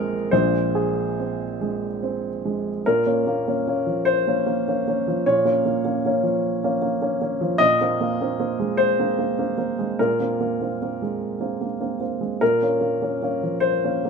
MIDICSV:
0, 0, Header, 1, 2, 480
1, 0, Start_track
1, 0, Key_signature, -5, "minor"
1, 0, Tempo, 842697
1, 178, Time_signature, 6, 3, 24, 8
1, 1618, Tempo, 797872
1, 3538, Tempo, 784314
1, 5458, Tempo, 808625
1, 8383, End_track
2, 0, Start_track
2, 0, Title_t, "Grand piano"
2, 0, Program_c, 0, 0
2, 0, Control_c, 0, 64, 127
2, 0, Note_on_c, 0, 34, 67
2, 0, Note_on_c, 0, 46, 74
2, 0, Note_on_c, 0, 56, 43
2, 0, Note_on_c, 0, 60, 52
2, 0, Note_on_c, 0, 68, 58
2, 0, Note_on_c, 0, 70, 99
2, 88, Note_off_c, 0, 60, 0
2, 164, Note_off_c, 0, 34, 0
2, 167, Note_off_c, 0, 46, 0
2, 179, Note_on_c, 0, 72, 78
2, 182, Note_off_c, 0, 70, 0
2, 184, Note_on_c, 0, 34, 55
2, 187, Note_on_c, 0, 46, 53
2, 189, Control_c, 0, 64, 0
2, 192, Note_off_c, 0, 68, 0
2, 302, Control_c, 0, 64, 127
2, 332, Note_off_c, 0, 56, 0
2, 427, Note_on_c, 0, 68, 45
2, 680, Note_on_c, 0, 60, 46
2, 809, Note_off_c, 0, 68, 0
2, 901, Note_off_c, 0, 72, 0
2, 918, Note_on_c, 0, 56, 43
2, 1054, Note_off_c, 0, 60, 0
2, 1156, Note_on_c, 0, 60, 44
2, 1293, Note_off_c, 0, 56, 0
2, 1398, Note_on_c, 0, 56, 37
2, 1531, Note_off_c, 0, 60, 0
2, 1597, Note_off_c, 0, 34, 0
2, 1598, Note_off_c, 0, 46, 0
2, 1626, Note_off_c, 0, 56, 0
2, 1627, Control_c, 0, 64, 0
2, 1631, Note_on_c, 0, 70, 73
2, 1636, Note_on_c, 0, 46, 53
2, 1722, Control_c, 0, 64, 127
2, 1745, Note_off_c, 0, 46, 0
2, 1753, Note_on_c, 0, 61, 44
2, 1754, Note_on_c, 0, 58, 38
2, 1856, Note_off_c, 0, 61, 0
2, 1857, Note_off_c, 0, 58, 0
2, 1877, Note_on_c, 0, 58, 39
2, 1993, Note_off_c, 0, 58, 0
2, 2001, Note_on_c, 0, 61, 43
2, 2002, Note_on_c, 0, 58, 35
2, 2101, Note_off_c, 0, 61, 0
2, 2102, Note_off_c, 0, 58, 0
2, 2121, Note_on_c, 0, 58, 38
2, 2126, Note_on_c, 0, 61, 42
2, 2221, Note_off_c, 0, 58, 0
2, 2224, Note_off_c, 0, 61, 0
2, 2234, Note_on_c, 0, 53, 35
2, 2347, Note_on_c, 0, 72, 79
2, 2350, Note_off_c, 0, 70, 0
2, 2480, Note_on_c, 0, 58, 36
2, 2484, Note_on_c, 0, 61, 41
2, 2580, Note_off_c, 0, 58, 0
2, 2583, Note_off_c, 0, 61, 0
2, 2594, Note_on_c, 0, 58, 40
2, 2613, Note_off_c, 0, 53, 0
2, 2718, Note_off_c, 0, 58, 0
2, 2727, Note_on_c, 0, 58, 36
2, 2727, Note_on_c, 0, 61, 42
2, 2823, Note_off_c, 0, 58, 0
2, 2824, Note_off_c, 0, 61, 0
2, 2843, Note_on_c, 0, 58, 36
2, 2853, Note_on_c, 0, 61, 41
2, 2941, Note_off_c, 0, 58, 0
2, 2947, Note_off_c, 0, 61, 0
2, 2963, Note_on_c, 0, 53, 39
2, 3063, Note_off_c, 0, 72, 0
2, 3071, Control_c, 0, 64, 0
2, 3075, Note_on_c, 0, 73, 71
2, 3079, Note_on_c, 0, 46, 53
2, 3143, Note_off_c, 0, 53, 0
2, 3184, Control_c, 0, 64, 127
2, 3186, Note_off_c, 0, 46, 0
2, 3189, Note_on_c, 0, 58, 40
2, 3189, Note_on_c, 0, 61, 44
2, 3292, Note_off_c, 0, 58, 0
2, 3292, Note_off_c, 0, 61, 0
2, 3311, Note_on_c, 0, 58, 42
2, 3419, Note_off_c, 0, 58, 0
2, 3428, Note_on_c, 0, 58, 40
2, 3429, Note_on_c, 0, 61, 44
2, 3530, Note_off_c, 0, 58, 0
2, 3531, Note_off_c, 0, 61, 0
2, 3552, Note_on_c, 0, 58, 41
2, 3557, Note_on_c, 0, 61, 46
2, 3654, Note_off_c, 0, 58, 0
2, 3656, Note_off_c, 0, 61, 0
2, 3662, Note_on_c, 0, 53, 41
2, 3912, Note_on_c, 0, 58, 42
2, 3912, Note_on_c, 0, 61, 45
2, 4011, Note_off_c, 0, 58, 0
2, 4012, Note_off_c, 0, 61, 0
2, 4020, Note_on_c, 0, 58, 45
2, 4041, Note_off_c, 0, 53, 0
2, 4133, Note_off_c, 0, 58, 0
2, 4142, Note_on_c, 0, 58, 43
2, 4146, Note_on_c, 0, 61, 48
2, 4245, Note_off_c, 0, 58, 0
2, 4247, Note_off_c, 0, 61, 0
2, 4260, Note_off_c, 0, 73, 0
2, 4262, Note_on_c, 0, 58, 42
2, 4270, Note_on_c, 0, 61, 45
2, 4365, Note_off_c, 0, 58, 0
2, 4369, Note_off_c, 0, 61, 0
2, 4381, Note_on_c, 0, 53, 47
2, 4488, Note_on_c, 0, 75, 97
2, 4496, Note_off_c, 0, 53, 0
2, 4498, Note_on_c, 0, 46, 59
2, 4502, Control_c, 0, 64, 0
2, 4592, Control_c, 0, 64, 127
2, 4612, Note_off_c, 0, 46, 0
2, 4626, Note_on_c, 0, 60, 46
2, 4628, Note_on_c, 0, 58, 45
2, 4729, Note_off_c, 0, 60, 0
2, 4730, Note_off_c, 0, 58, 0
2, 4748, Note_on_c, 0, 58, 47
2, 4864, Note_off_c, 0, 58, 0
2, 4873, Note_on_c, 0, 58, 44
2, 4875, Note_on_c, 0, 60, 48
2, 4974, Note_off_c, 0, 58, 0
2, 4975, Note_off_c, 0, 60, 0
2, 4984, Note_on_c, 0, 60, 49
2, 4986, Note_on_c, 0, 58, 46
2, 5089, Note_off_c, 0, 60, 0
2, 5090, Note_off_c, 0, 58, 0
2, 5107, Note_on_c, 0, 56, 45
2, 5214, Note_off_c, 0, 75, 0
2, 5216, Note_on_c, 0, 72, 88
2, 5351, Note_on_c, 0, 58, 40
2, 5352, Note_on_c, 0, 60, 43
2, 5454, Note_off_c, 0, 58, 0
2, 5454, Note_off_c, 0, 60, 0
2, 5468, Note_on_c, 0, 58, 43
2, 5486, Note_off_c, 0, 56, 0
2, 5580, Note_off_c, 0, 58, 0
2, 5589, Note_on_c, 0, 58, 41
2, 5589, Note_on_c, 0, 60, 42
2, 5690, Note_off_c, 0, 58, 0
2, 5690, Note_off_c, 0, 60, 0
2, 5701, Note_on_c, 0, 58, 38
2, 5704, Note_on_c, 0, 60, 40
2, 5806, Note_off_c, 0, 58, 0
2, 5808, Note_off_c, 0, 60, 0
2, 5825, Note_on_c, 0, 56, 39
2, 5935, Note_off_c, 0, 72, 0
2, 5947, Control_c, 0, 64, 0
2, 5947, Note_on_c, 0, 70, 67
2, 5950, Note_on_c, 0, 46, 51
2, 6013, Note_off_c, 0, 56, 0
2, 6053, Control_c, 0, 64, 127
2, 6060, Note_off_c, 0, 46, 0
2, 6070, Note_on_c, 0, 58, 35
2, 6077, Note_on_c, 0, 60, 40
2, 6173, Note_off_c, 0, 58, 0
2, 6176, Note_off_c, 0, 60, 0
2, 6192, Note_on_c, 0, 58, 36
2, 6307, Note_off_c, 0, 58, 0
2, 6316, Note_on_c, 0, 58, 33
2, 6321, Note_on_c, 0, 60, 37
2, 6417, Note_off_c, 0, 58, 0
2, 6420, Note_off_c, 0, 60, 0
2, 6440, Note_on_c, 0, 58, 34
2, 6440, Note_on_c, 0, 60, 39
2, 6539, Note_off_c, 0, 58, 0
2, 6539, Note_off_c, 0, 60, 0
2, 6557, Note_on_c, 0, 56, 32
2, 6785, Note_on_c, 0, 58, 31
2, 6787, Note_on_c, 0, 60, 34
2, 6890, Note_off_c, 0, 58, 0
2, 6891, Note_off_c, 0, 60, 0
2, 6909, Note_on_c, 0, 58, 33
2, 6932, Note_off_c, 0, 56, 0
2, 7015, Note_off_c, 0, 58, 0
2, 7024, Note_on_c, 0, 58, 33
2, 7026, Note_on_c, 0, 60, 34
2, 7130, Note_off_c, 0, 58, 0
2, 7132, Note_off_c, 0, 60, 0
2, 7140, Note_on_c, 0, 60, 35
2, 7142, Note_on_c, 0, 58, 29
2, 7146, Note_off_c, 0, 70, 0
2, 7249, Note_off_c, 0, 58, 0
2, 7249, Note_off_c, 0, 60, 0
2, 7262, Note_on_c, 0, 56, 33
2, 7381, Note_off_c, 0, 56, 0
2, 7383, Note_on_c, 0, 70, 67
2, 7386, Note_on_c, 0, 46, 46
2, 7391, Control_c, 0, 64, 0
2, 7481, Control_c, 0, 64, 127
2, 7499, Note_off_c, 0, 46, 0
2, 7509, Note_on_c, 0, 58, 34
2, 7512, Note_on_c, 0, 61, 39
2, 7610, Note_off_c, 0, 58, 0
2, 7614, Note_off_c, 0, 61, 0
2, 7619, Note_on_c, 0, 58, 36
2, 7735, Note_off_c, 0, 58, 0
2, 7744, Note_on_c, 0, 58, 34
2, 7750, Note_on_c, 0, 61, 36
2, 7850, Note_off_c, 0, 58, 0
2, 7854, Note_off_c, 0, 61, 0
2, 7864, Note_on_c, 0, 58, 36
2, 7871, Note_on_c, 0, 61, 39
2, 7971, Note_off_c, 0, 58, 0
2, 7974, Note_off_c, 0, 61, 0
2, 7987, Note_on_c, 0, 53, 38
2, 8090, Note_on_c, 0, 72, 78
2, 8102, Note_off_c, 0, 70, 0
2, 8233, Note_on_c, 0, 58, 36
2, 8233, Note_on_c, 0, 61, 40
2, 8335, Note_off_c, 0, 58, 0
2, 8335, Note_off_c, 0, 61, 0
2, 8356, Note_on_c, 0, 58, 40
2, 8367, Note_off_c, 0, 53, 0
2, 8383, Note_off_c, 0, 58, 0
2, 8383, Note_off_c, 0, 72, 0
2, 8383, End_track
0, 0, End_of_file